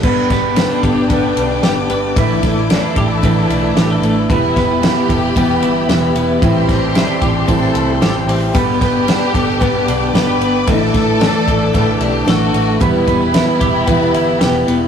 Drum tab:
CC |x-------|--------|--------|--------|
RD |-xxxxxxx|xxxxxxxx|xxxxxxxx|xxxxxxxx|
HH |--------|--------|--------|-------o|
SD |-oo---o-|-oo---o-|-oo---o-|-oo---o-|
BD |oo-oo---|oo-oo---|oo-oo---|oo-oo---|

CC |--------|--------|--------|
RD |xxxxxxxx|xxxxxxxx|xxxxxxxx|
HH |p-------|--------|--------|
SD |-oo---o-|-oo---o-|--o---o-|
BD |oo-oo---|oo-oo---|oo-oo---|